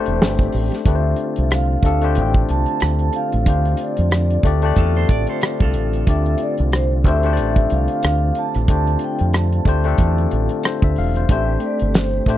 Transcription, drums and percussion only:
0.06 closed hi-hat soft
0.22 snare loud
0.38 kick loud
0.38 closed hi-hat soft
0.52 open hi-hat medium
0.72 snare soft
0.72 closed hi-hat medium
0.85 kick loud
0.85 closed hi-hat medium
1.16 closed hi-hat medium
1.36 closed hi-hat medium
1.51 cross-stick loud
1.51 closed hi-hat medium
1.83 kick medium
1.83 closed hi-hat medium
2.01 closed hi-hat soft
2.15 closed hi-hat medium
2.34 kick medium
2.49 closed hi-hat medium
2.66 closed hi-hat soft
2.80 cross-stick medium
2.80 closed hi-hat medium
2.99 closed hi-hat soft
3.13 closed hi-hat medium
3.32 closed hi-hat soft
3.46 kick loud
3.46 closed hi-hat medium
3.65 closed hi-hat soft
3.77 closed hi-hat medium
3.97 closed hi-hat soft
4.11 cross-stick loud
4.11 closed hi-hat medium
4.30 closed hi-hat soft
4.43 kick medium
4.43 closed hi-hat medium
4.62 closed hi-hat soft
4.76 kick medium
4.76 closed hi-hat medium
4.96 closed hi-hat soft
5.09 kick medium
5.09 closed hi-hat medium
5.27 closed hi-hat soft
5.41 cross-stick loud
5.41 closed hi-hat medium
5.60 kick medium
5.74 closed hi-hat medium
5.93 closed hi-hat soft
6.07 kick medium
6.07 closed hi-hat medium
6.26 closed hi-hat soft
6.38 closed hi-hat medium
6.58 closed hi-hat medium
6.72 cross-stick loud
6.72 closed hi-hat medium
7.04 kick medium
7.04 closed hi-hat medium
7.23 closed hi-hat soft
7.37 closed hi-hat medium
7.56 kick medium
7.56 closed hi-hat soft
7.70 closed hi-hat medium
7.88 closed hi-hat soft
8.03 cross-stick loud
8.03 closed hi-hat medium
8.35 closed hi-hat medium
8.54 cross-stick soft
8.54 closed hi-hat soft
8.68 kick loud
8.68 closed hi-hat medium
8.87 closed hi-hat soft
8.99 closed hi-hat medium
9.19 closed hi-hat medium
9.33 cross-stick loud
9.33 closed hi-hat medium
9.53 closed hi-hat soft
9.65 kick medium
9.65 closed hi-hat medium
9.84 closed hi-hat soft
9.98 kick medium
9.98 closed hi-hat medium
10.18 closed hi-hat soft
10.31 closed hi-hat medium
10.49 closed hi-hat soft
10.63 cross-stick loud
10.63 closed hi-hat medium
10.82 kick medium
10.96 open hi-hat soft
11.15 closed hi-hat soft
11.29 kick loud
11.29 closed hi-hat medium
11.60 closed hi-hat medium
11.80 closed hi-hat medium
11.94 snare loud
11.94 closed hi-hat medium
12.26 kick medium
12.26 closed hi-hat medium

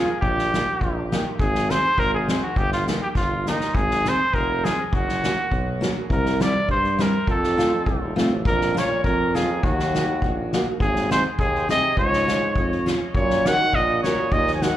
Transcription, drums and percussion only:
0.22 kick medium
0.38 snare soft
0.54 snare medium
0.54 hi-hat pedal soft
0.81 kick medium
1.12 snare medium
1.12 hi-hat pedal soft
1.39 kick medium
1.54 snare medium
1.70 snare medium
1.70 hi-hat pedal soft
1.98 kick medium
2.28 snare medium
2.28 hi-hat pedal soft
2.56 kick medium
2.72 snare medium
2.87 snare medium
2.87 hi-hat pedal soft
3.15 kick medium
3.15 snare soft
3.46 snare medium
3.46 hi-hat pedal soft
3.60 snare medium
3.75 kick medium
3.90 snare soft
4.05 snare medium
4.05 hi-hat pedal soft
4.34 kick medium
4.65 snare medium
4.65 hi-hat pedal soft
4.93 kick medium
5.08 snare medium
5.23 snare medium
5.23 hi-hat pedal soft
5.51 kick medium
5.82 snare medium
5.82 hi-hat pedal soft
6.10 kick medium
6.25 snare soft
6.40 snare medium
6.40 hi-hat pedal soft
6.69 kick medium
6.84 snare soft
6.99 snare medium
6.99 hi-hat pedal soft
7.27 kick medium
7.43 snare soft
7.59 snare medium
7.59 hi-hat pedal soft
7.86 kick medium
8.17 snare medium
8.17 hi-hat pedal soft
8.45 kick medium
8.61 snare medium
8.77 snare medium
8.77 hi-hat pedal medium
9.04 kick medium
9.35 snare medium
9.35 hi-hat pedal soft
9.63 kick medium
9.79 snare medium
9.95 snare medium
9.95 hi-hat pedal soft
10.22 kick medium
10.53 snare medium
10.53 hi-hat pedal soft
10.80 kick medium
10.95 snare soft
11.11 snare medium
11.11 hi-hat pedal soft
11.39 kick medium
11.55 snare soft
11.69 snare medium
11.69 hi-hat pedal soft
11.97 kick medium
12.13 snare soft
12.28 snare medium
12.28 hi-hat pedal soft
12.56 kick medium
12.72 snare soft
12.87 snare medium
12.87 hi-hat pedal soft
13.15 kick medium
13.30 snare medium
13.46 snare medium
13.46 hi-hat pedal medium
13.73 kick medium
14.04 snare medium
14.04 hi-hat pedal soft
14.32 kick medium
14.47 snare soft
14.62 snare medium
14.62 hi-hat pedal soft

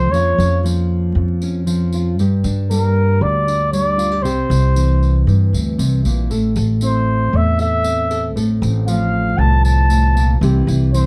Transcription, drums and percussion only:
0.14 tambourine medium
0.40 tambourine medium
0.66 tambourine medium
1.42 tambourine medium
1.67 tambourine medium
1.92 tambourine medium
2.19 tambourine medium
2.44 tambourine medium
2.71 tambourine medium
3.48 tambourine medium
3.73 tambourine loud
3.99 tambourine medium
4.25 tambourine medium
4.51 tambourine medium
4.76 tambourine loud
5.03 tambourine soft
5.29 tambourine soft
5.54 tambourine medium
5.79 tambourine loud
6.05 tambourine medium
6.31 tambourine medium
6.56 tambourine medium
6.81 tambourine medium
7.59 tambourine medium
7.84 tambourine medium
8.11 tambourine medium
8.37 tambourine medium
8.63 tambourine medium
8.88 tambourine medium
9.65 tambourine medium
9.90 tambourine medium
10.17 tambourine medium
10.43 tambourine medium
10.68 tambourine medium
10.94 tambourine medium

